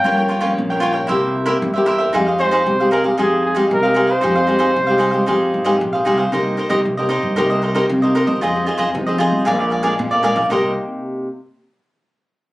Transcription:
<<
  \new Staff \with { instrumentName = "Cavaquinho" } { \time 4/4 \key f \minor \tempo 4 = 115 <f' bes' des'' g''>16 <bes' des'' g''>16 <f' bes' des'' g''>16 <f' bes' des'' g''>16 r16 <bes' des'' g''>16 <f' bes' des'' g''>16 <bes' des'' g''>16 <e' bes' c'' e''>8. <e' bes' c'' e''>16 r16 <bes' c'' e''>16 <e' bes' c'' e''>16 <bes' c'' e''>16 | <ees' aes' c'' f''>16 <aes' c'' f''>16 <ees' aes' c'' f''>16 <ees' aes' c'' f''>16 r16 <aes' c'' f''>16 <ees' aes' c'' f''>16 <aes' c'' f''>16 <ees' aes' c'' f''>8. <ees' aes' c'' f''>16 r16 <aes' c'' f''>16 <ees' aes' c'' f''>16 <aes' c'' f''>16 | <ees' aes' c'' f''>16 <aes' c'' f''>16 <ees' aes' c'' f''>16 <ees' aes' c'' f''>16 r16 <aes' c'' f''>16 <ees' aes' c'' f''>16 <aes' c'' f''>16 <ees' aes' c'' f''>8. <ees' aes' c'' f''>16 r16 <aes' c'' f''>16 <ees' aes' c'' f''>16 <aes' c'' f''>16 | \key c \minor <ees' bes' c'' ees''>8 <ees' bes' c'' ees''>16 <ees' bes' c'' ees''>16 r16 <bes' c'' ees''>16 <ees' bes' c'' ees''>8 <ees' bes' c'' ees''>16 <bes' c'' ees''>16 <ees' bes' c'' ees''>16 <ees' bes' c'' ees''>16 r16 <bes' c'' ees''>16 <ees' bes' c'' ees''>16 <bes' c'' ees''>16 |
<f' aes' c'' ees''>8 <f' aes' c'' ees''>16 <f' aes' c'' ees''>16 r16 <aes' c'' ees''>16 <f' aes' c'' ees''>8 <aes' bes' d'' f''>16 <bes' d'' f''>16 <aes' bes' d'' f''>16 <aes' bes' d'' f''>16 r16 <bes' d'' f''>16 <aes' bes' d'' f''>16 <bes' d'' f''>16 | <ees' bes' c'' ees''>8 r2. r8 | }
  \new Staff \with { instrumentName = "Flugelhorn" } { \time 4/4 \key f \minor g''8 r2. r8 | r8 c''4 bes'8 aes'8 aes'8 bes'8. c''16~ | c''2. r4 | \key c \minor r1 |
r1 | r1 | }
  \new Staff \with { instrumentName = "Nylon-string guitar" } { \time 4/4 \key f \minor << { <f bes des'>8 r16 <f bes des'>8. <f bes des'>8 <bes e' g'>8 r16 <bes e' g'>8 <bes e' g'>8. | <aes ees' g'>8 <aes ees' g'>8 <aes ees' g'>16 <aes ees' g'>8 <aes ees' g'>16 <aes ees' g'>8 r16 <aes ees' g'>8 <aes ees' g'>16 <aes ees' g'>16 r16 | <aes ees' g'>16 r16 <aes ees' g'>8 r16 <aes ees' g'>8 <aes ees' g'>16 <aes ees' g'>8. <aes ees' g'>8. <aes ees' g'>16 r16 | \key c \minor <bes ees' g'>8. <bes ees' g'>8 <bes ees' g'>8. <bes ees' g'>8. <bes ees' g'>8 <bes ees' g'>8. |
<c' ees' aes'>16 <c' ees' aes'>16 <c' ees' aes'>8 <c' ees' aes'>16 <c' ees' aes'>8. <f aes d'>8 r16 <f aes d'>8. <f aes d'>16 r16 | <c bes ees' g'>8 r2. r8 | } \\ { g,4 g,4 c4 g,4 | f4 c4 f4 c4 | f4 c4 f4 c4 | c4 g,4 c4 g,4 |
f4 c4 bes,4 f,4 | r1 | } >> }
  \new Staff \with { instrumentName = "Upright bass" } { \clef bass \time 4/4 \key f \minor g,,4 bes,,4 c,4 e,4 | f,4 c,4 f,4 c,4 | f,4 c,4 f,8 aes,,8 bes,,8 c,8 | \key c \minor c,8 r16 c,16 c8. g,16 c,4 c8. c,16 |
f,8 r16 f,16 f8. c,16 bes,,4 bes,8. b,,16 | c,8 r2. r8 | }
>>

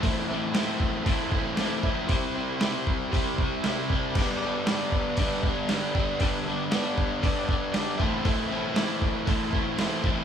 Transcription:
<<
  \new Staff \with { instrumentName = "Transistor combo organ" } { \time 4/4 \key a \minor \tempo 4 = 117 <e' a' c''>8 <e' a' d''>8 <e' a' c''>8 r8 <e' a' c''>8 r8 <e' a' d''>8 r8 | <e' g' c''>8 <e' g' c''>8 <e' g' c''>8 r8 <e' g' c''>8 r8 <e' g' c'' e''>8 a''8 | <d' g' b'>8 <d' g' d''>8 <d' g' b'>8 r8 <d' g' b'>8 r8 <d' g' b'>8 r8 | <d' g' b'>8 <d' g' d''>8 <d' g' b'>8 r8 <d' g' a'>8 r8 <d' g' d''>8 <e' a' c''>8~ |
<e' a' c''>8 <e' a' b'>8 <e' a' d''>8 r8 <e' a' c''>8 r8 <e' a' c''>8 r8 | }
  \new Staff \with { instrumentName = "Overdriven electric guitar" } { \time 4/4 \key a \minor <a, e a c' e'>8 <a c' e'>8 <e a c' e'>4 <a, e a c' e'>8 <a c' e'>8 <e a c' e'>8 <a c' e'>8 | <c g c' e'>8 <g c' e'>8 <c g c' e'>4 <c g c' e'>8 <g c' e'>8 <c g c' e'>8 <g c' e'>8 | <g, d g b d'>8 <g b d'>8 <d g b d'>4 <g, d g b d'>8 <g b d'>8 <d g b d'>8 <g b d'>8 | <g, d g b d'>8 <g b d'>8 <d g b d'>4 <g, d g b d'>8 <g b d'>8 <d g b d'>8 <a, e a c' e'>8 |
<a, e a c' e'>8 <a c' e'>8 <e a c' e'>4 <a, e a c' e'>8 <a c' e'>8 <e a c' e'>8 <a c' e'>8 | }
  \new DrumStaff \with { instrumentName = "Drums" } \drummode { \time 4/4 <hho bd>4 <hho sn>8 bd8 <hho bd>8 bd8 <hho sn>8 bd8 | <hho bd>4 <hho sn>8 bd8 <hho bd>8 bd8 <hho sn>8 bd8 | <cymc bd>4 <hho sn>8 bd8 <hho bd>8 bd8 <hho sn>8 bd8 | <hho bd>4 <hho sn>8 bd8 <hho bd>8 bd8 <hho sn>8 bd8 |
<hho bd>4 <hho sn>8 bd8 <hho bd>8 bd8 <hho sn>8 bd8 | }
>>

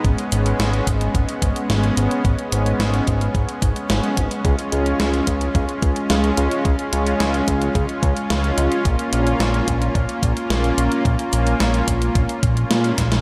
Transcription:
<<
  \new Staff \with { instrumentName = "Supersaw synth" } { \time 4/4 \key gis \dorian \tempo 4 = 109 << { <b cis'>1~ | <b cis'>1 | eis'1~ | eis'1~ |
eis'1~ | eis'1 | } \\ { gis1~ | gis1 | gis1~ | gis1 |
ais1~ | ais1 | } >> }
  \new Staff \with { instrumentName = "Analog synth bass" } { \clef bass \time 4/4 \key gis \dorian gis,,8 gis,,8 gis,,8 gis,,8 gis,,8 gis,,8 gis,,8 gis,,8 | gis,,8 gis,,8 gis,,8 gis,,8 gis,,8 gis,,8 gis,,8 gis,,8 | cis,8 cis,8 cis,8 cis,8 cis,8 cis,8 cis,8 cis,8 | cis,8 cis,8 cis,8 cis,8 cis,8 cis,8 cis,8 cis,8 |
ais,,8 ais,,8 ais,,8 ais,,8 ais,,8 ais,,8 ais,,8 ais,,8 | ais,,8 ais,,8 ais,,8 ais,,8 ais,,8 ais,,8 ais,8 ais,,8 | }
  \new DrumStaff \with { instrumentName = "Drums" } \drummode { \time 4/4 <hh bd>16 hh16 hh16 hh16 <hh sn>16 hh16 <hh bd>16 hh16 <hh bd>16 hh16 <hh bd>16 hh16 <hh sn>16 hh16 hh16 hh16 | <hh bd>16 hh16 hh16 hh16 <hh sn>16 hh16 <hh bd>16 hh16 <hh bd>16 hh16 <hh bd>16 hh16 <hh sn>16 hh16 <hh bd>16 hh16 | <hh bd>16 hh16 hh16 hh16 <hh sn>16 hh16 <hh bd>16 hh16 <hh bd>16 hh16 <hh bd>16 hh16 <hh sn>16 hh16 hh16 hh16 | <hh bd>16 hh16 hh16 hh16 <hh sn>16 hh16 <hh bd>16 hh16 <hh bd>16 hh16 <hh bd>16 hh16 <hh sn>16 hh16 hh16 hh16 |
<hh bd>16 hh16 hh16 hh16 <hh sn>16 hh16 <hh bd>16 hh16 <hh bd>16 hh16 <hh bd>16 hh16 <hh sn>16 hh16 hh16 hh16 | <hh bd>16 hh16 hh16 hh16 <hh sn>16 hh16 <hh bd>16 hh16 <hh bd>16 hh16 <hh bd>16 hh16 <hh sn>16 hh16 <hh bd sn>16 <hh sn>16 | }
>>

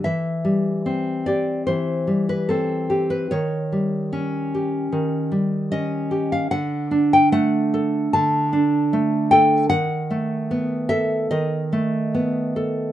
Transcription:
\new Staff \with { instrumentName = "Nylon-string guitar" } { \time 4/4 \key c \lydian \tempo 4 = 74 << { e''4. d''8 c''8. b'16 a'8. b'16 | des''2. ees''8. f''16 | fis''8. g''16 fis''4 a''4. g''8 | fis''4. e''8 dis''4 r4 | } \\ { e8 g8 c'8 g'8 e8 g8 c'8 g'8 | ees8 g8 des'8 g'8 ees8 g8 des'8 g'8 | d8 d'8 a8 a'8 d8 d'8 a8 a'8 | dis8 a8 b8 a'8 dis8 a8 b8 a'8 | } >> }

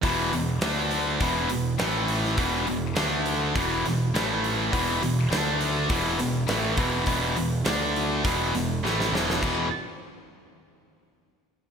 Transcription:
<<
  \new Staff \with { instrumentName = "Distorted electric guitar" } { \clef bass \time 4/4 \key d \lydian \tempo 4 = 102 <e, b, e>8 <e, b,>8 <d a d'>4 <e, b, e>8 <e, b,>8 <a, e a>4 | <e, b, e>8 <e, b,>8 <d a d'>4 <e, b, e>8 <e, b,>8 <a, e a>4 | <e, b, e>8 <e, b,>8 <d a d'>4 <e, b, e>8 <e, b,>8 <a, e a>8 <e, b, e>8 | <e, b, e>8 <e, b,>8 <d a d'>4 <e, b, e>8 <e, b,>8 <a, e a>8 <e, b, e>8 |
<e, b, e>8 r2. r8 | }
  \new Staff \with { instrumentName = "Distorted electric guitar" } { \clef bass \time 4/4 \key d \lydian <e, b, e>8 <e, b,>8 <d a d'>4 <e, b, e>8 <e, b,>8 <a, e a>4 | <e, b, e>8 <e, b,>8 <d a d'>4 <e, b, e>8 <e, b,>8 <a, e a>4 | <e, b, e>8 <e, b,>8 <d a d'>4 <e, b, e>8 <e, b,>8 <a, e a>8 <e, b, e>8 | <e, b, e>8 <e, b,>8 <d a d'>4 <e, b, e>8 <e, b,>8 <a, e a>8 <e, b, e>8 |
<e, b, e>8 r2. r8 | }
  \new Staff \with { instrumentName = "Picked electric bass" } { \clef bass \time 4/4 \key d \lydian e,,8 e,,8 d,4 e,,8 e,,8 a,,4 | e,,8 e,,8 d,4 e,,8 e,,8 a,,4 | e,,8 e,,8 d,4 e,,8 e,,8 a,,8 e,,8 | e,,8 e,,8 d,4 e,,8 e,,8 a,,8 e,,8 |
e,,8 r2. r8 | }
  \new DrumStaff \with { instrumentName = "Drums" } \drummode { \time 4/4 <hho bd>8 hho8 <hho sn>8 hho8 <hho bd>8 hho8 <hho sn>8 hho16 sn16 | <hho bd>8 hho8 <hho sn>8 hho8 <hho bd>8 <hho sn>8 <hho sn>8 hho8 | <hho bd>8 hho8 <hho sn>8 hho8 <hho bd>8 <hho sn>8 <hho sn>8 <hho bd>8 | <hho bd>8 hho8 <hho sn>8 hho8 <hho bd>8 <hho sn>8 sn16 sn16 sn16 sn16 |
<cymc bd>4 r4 r4 r4 | }
>>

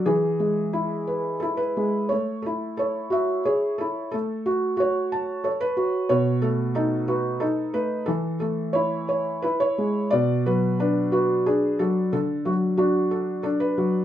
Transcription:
\new Staff \with { instrumentName = "Felt piano" } { \time 3/4 \key a \major \tempo 4 = 90 << { gis'2 a'16 b'8. | cis''8 a'8 a'8 fis'8 gis'8 a'8 | a'8 fis'8 fis'4 a'16 b'8. | cis''8 a'8 a'8 fis'8 a'8 b'8 |
a'8 a'8 cis''4 b'16 cis''8. | d''8 b'8 b'8 fis'8 gis'8 a'8 | a'8 fis'8 fis'4 a'16 b'8. | } \\ { e8 gis8 e'8 b'8 e'8 gis8 | a8 e'8 cis''8 e''8 cis''8 e'8 | a4 cis''8 a''8 cis''8 fis'8 | b,8 a8 dis'8 b'8 dis'8 a8 |
e8 a8 e'8 cis''8 e'8 gis8 | b,8 fis8 d'8 b'8 d'8 fis8 | d8 fis8 d'8 a'8 d'8 fis8 | } >> }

